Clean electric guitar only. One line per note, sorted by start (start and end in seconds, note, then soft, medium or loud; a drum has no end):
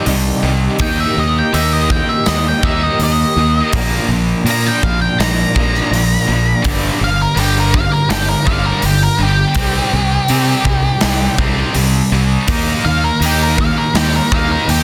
0.04 0.77 C3 medium
0.04 0.41 D#3 medium
0.04 0.42 G3 medium
0.04 0.43 D#4 medium
0.04 0.43 G4 loud
0.43 0.78 D#3 medium
0.43 0.62 G3 medium
0.43 0.61 D#4 medium
0.43 0.60 G4 medium
0.61 0.79 G3 medium
0.61 0.78 D#4 medium
0.61 0.78 G4 medium
0.81 1.16 A#3 medium
0.81 1.17 D#4 loud
0.81 1.17 G4 loud
1.16 1.51 D#3 medium
1.16 1.53 A#3 medium
1.16 1.53 D#4 medium
1.16 1.53 G4 medium
1.52 1.90 D#3 medium
1.52 1.73 A#3 medium
1.52 1.71 D#4 medium
1.52 1.70 G4 medium
1.71 1.91 A#3 medium
1.71 1.90 D#4 medium
1.71 1.91 G4 medium
2.09 2.47 A#3 medium
2.09 2.46 D#4 medium
2.09 2.44 G4 medium
2.45 2.63 A#3 medium
2.45 2.64 D#4 medium
2.45 2.64 G4 medium
2.64 3.00 D#3 medium
2.64 2.83 A#3 medium
2.64 2.83 D#4 medium
2.64 2.81 G4 medium
2.82 3.01 A#3 medium
2.82 3.02 D#4 medium
2.82 3.02 G4 medium
3.02 3.35 D#3 medium
3.02 3.36 A#3 medium
3.02 3.37 D#4 medium
3.02 3.37 G4 medium
3.36 3.71 D#3 medium
3.36 3.57 A#3 medium
3.36 3.56 D#4 medium
3.36 3.54 G4 medium
3.55 3.73 A#3 medium
3.55 3.72 D#4 medium
3.55 3.71 G4 medium
3.73 4.46 A#2 medium
3.73 4.10 D3 medium
3.73 4.10 A#3 medium
3.73 4.11 D4 medium
3.73 4.12 F4 loud
4.11 4.47 D3 medium
4.11 4.48 A#3 medium
4.11 4.49 D4 medium
4.11 4.49 F4 medium
4.48 5.02 A#2 medium
4.48 4.84 D3 medium
4.48 4.68 A#3 medium
4.48 4.66 D4 medium
4.48 4.65 F4 medium
4.66 4.85 A#3 medium
4.66 4.85 D4 medium
4.66 4.85 F4 medium
4.85 muted clean electric guitar stroke soft
5.03 5.40 A#3 soft
5.03 5.40 D4 medium
5.03 5.38 F4 medium
5.39 5.57 A#3 medium
5.39 5.57 D4 medium
5.39 5.58 F4 medium
5.57 5.92 D3 medium
5.57 5.76 A#3 medium
5.57 5.75 D4 medium
5.57 5.74 F4 medium
5.75 5.92 A#3 medium
5.75 5.93 D4 medium
5.75 5.93 F4 medium
5.92 6.63 A#2 medium
5.92 6.29 D3 medium
5.92 6.30 A#3 loud
5.92 6.31 D4 medium
5.92 6.31 F4 loud
6.30 6.64 D3 medium
6.30 6.48 A#3 medium
6.30 6.47 D4 medium
6.30 6.46 F4 medium
6.47 6.64 A#3 medium
6.47 6.64 D4 medium
6.47 6.63 F4 medium